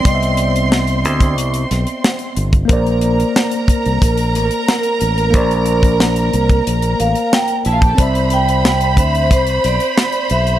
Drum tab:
HH |xxxx-xxxxxxx-xxx|xxxx-xxxxxxx-xxx|xxxx-xxxxxxx-xxx|xxxx-xxxxxxx-xxx|
SD |----o-----o-o---|----o-------o---|----o-------o---|----o-------o---|
BD |o------o-------o|o-----o-o-------|o--o---o-------o|o-----o-o-------|